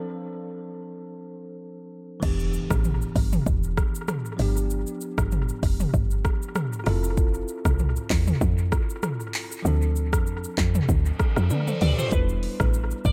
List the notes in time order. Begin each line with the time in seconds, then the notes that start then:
Already playing: F3 C4 D4 A4
2.20 E1 E3 B3 D4, kick, crash, impact, shaker
2.25 G4
2.39 shaker
2.53 shaker
2.70 A1, kick, cross-stick, shaker
2.84 mid tom, shaker
3.02 shaker
3.16 G1, kick, open hi-hat, shaker
3.33 mid tom, shaker
3.46 E1, kick, shaker
3.63 shaker
3.77 kick, cross-stick, shaker
3.95 shaker
4.08 cross-stick, mid tom, shaker
4.25 shaker
4.37 G1 F3 B3 D4, open hi-hat, shaker
4.42 G4
4.57 shaker
4.70 shaker
4.87 shaker
5.01 shaker
5.18 G1, kick, cross-stick, shaker
5.32 mid tom, shaker
5.49 shaker
5.63 F1, kick, open hi-hat, shaker
5.80 mid tom, shaker
5.94 G1, kick, shaker
6.11 shaker
6.25 kick, cross-stick, shaker
6.42 shaker
6.55 cross-stick, mid tom, shaker
6.73 shaker
6.84 F1 C4 E4 F4, cross-stick, open hi-hat, shaker
6.89 A4
7.04 shaker
7.17 kick, shaker
7.34 shaker
7.48 shaker
7.65 C2, kick, cross-stick, shaker
7.79 mid tom, shaker
7.96 shaker
8.10 E2, kick, clap, open hi-hat, shaker
8.27 mid tom, shaker
8.41 F2, kick, shaker
8.58 shaker
8.72 kick, cross-stick, shaker
8.90 shaker
9.03 cross-stick, mid tom, shaker
9.20 shaker
9.34 clap, open hi-hat, shaker
9.52 shaker
9.62 D2 F3 C4 D4, shaker
9.68 A4
9.82 shaker
9.96 shaker
10.13 F2, kick, cross-stick, shaker
10.27 shaker
10.44 shaker
10.58 F2, kick, clap, shaker
10.75 mid tom, shaker
10.89 D2, kick, reverse cymbal, shaker
11.05 shaker
11.20 kick, cross-stick, shaker
11.36 F2, cross-stick, shaker
11.50 D3 B4 D5, high tom, shaker
11.68 A4 C5, mid tom, shaker
11.81 D2 G4 B4 D5, mid tom, open hi-hat, shaker
11.98 F4 A4 C5, floor tom, shaker
12.10 E1 G3 B3 D4 E4 B4, kick, shaker
12.15 B4
12.29 shaker
12.43 open hi-hat
12.60 A1, kick, cross-stick, shaker
12.74 shaker
12.91 shaker
13.05 G1 D5, kick, shaker